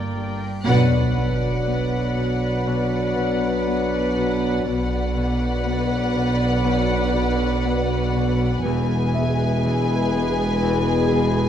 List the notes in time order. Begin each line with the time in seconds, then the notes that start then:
Already playing: G1 G2 G3 A#3 A#4 D5 G5, reverse cymbal
0.16 G2
0.65 B1 B2 F#3 B3 D4 B4 D5 F#5, sub drop
1.17 B2
1.67 B3
2.16 B2
2.66 B2 D5
3.17 B2
3.67 B3
4.17 B2
4.65 B1 B2 F#3 B3 D4 B4 D5 F#5
5.17 B2
5.66 B3
6.16 B2
6.64 B2
7.15 B2
7.64 B3
8.15 B2
8.65 E1 E2 B2 G#3 B3 E4 G#4 B4 G#5
9.15 E2 E5
9.65 E3
10.15 E2
10.63 E2
11.12 E2